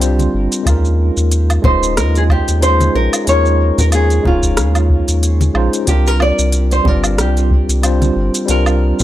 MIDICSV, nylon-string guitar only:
0, 0, Header, 1, 2, 480
1, 0, Start_track
1, 0, Tempo, 652174
1, 486, Time_signature, 4, 2, 24, 8
1, 6650, End_track
2, 0, Start_track
2, 0, Title_t, "Nylon-string guitar"
2, 0, Program_c, 0, 24
2, 0, Note_on_c, 0, 67, 80
2, 227, Note_off_c, 0, 67, 0
2, 1212, Note_on_c, 0, 72, 95
2, 1453, Note_off_c, 0, 72, 0
2, 1456, Note_on_c, 0, 70, 94
2, 1590, Note_off_c, 0, 70, 0
2, 1600, Note_on_c, 0, 68, 88
2, 1636, Note_off_c, 0, 68, 0
2, 1704, Note_on_c, 0, 67, 87
2, 1932, Note_on_c, 0, 72, 105
2, 1935, Note_off_c, 0, 67, 0
2, 2171, Note_off_c, 0, 72, 0
2, 2174, Note_on_c, 0, 70, 100
2, 2417, Note_off_c, 0, 70, 0
2, 2420, Note_on_c, 0, 73, 105
2, 2793, Note_off_c, 0, 73, 0
2, 2796, Note_on_c, 0, 70, 96
2, 2833, Note_off_c, 0, 70, 0
2, 2903, Note_on_c, 0, 68, 94
2, 3142, Note_off_c, 0, 68, 0
2, 3144, Note_on_c, 0, 65, 84
2, 4066, Note_off_c, 0, 65, 0
2, 4330, Note_on_c, 0, 67, 89
2, 4470, Note_off_c, 0, 67, 0
2, 4470, Note_on_c, 0, 70, 89
2, 4574, Note_off_c, 0, 70, 0
2, 4578, Note_on_c, 0, 74, 106
2, 4945, Note_off_c, 0, 74, 0
2, 4948, Note_on_c, 0, 72, 94
2, 5060, Note_off_c, 0, 72, 0
2, 5060, Note_on_c, 0, 70, 92
2, 5300, Note_off_c, 0, 70, 0
2, 5302, Note_on_c, 0, 67, 72
2, 5985, Note_off_c, 0, 67, 0
2, 6258, Note_on_c, 0, 70, 92
2, 6650, Note_off_c, 0, 70, 0
2, 6650, End_track
0, 0, End_of_file